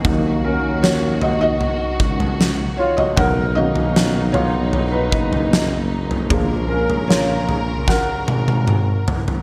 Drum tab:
SD |----o-------o---|----o-------o---|----o---o-------|
T1 |----------------|----------------|----------oo----|
T2 |----------------|----------------|------------o---|
FT |o-----o-o--o---o|o--o--o-o--o---o|o--o--o-------oo|
BD |o---------o-----|o---------o-----|o-------o-------|